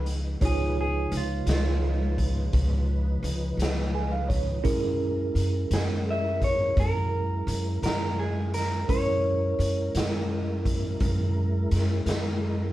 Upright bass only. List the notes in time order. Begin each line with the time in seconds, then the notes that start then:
Already playing: C#2
0.41 C#2
1.12 C#2
1.46 C#2
2.53 C#2
3.23 C#2
3.57 C#2
4.65 F#2
5.35 F#2
5.71 F#2
6.77 F#2
7.47 F#2
7.83 F#2
8.89 F#2
9.59 F#2
9.95 F#2
11.01 F#2
11.72 F#2
12.06 F#2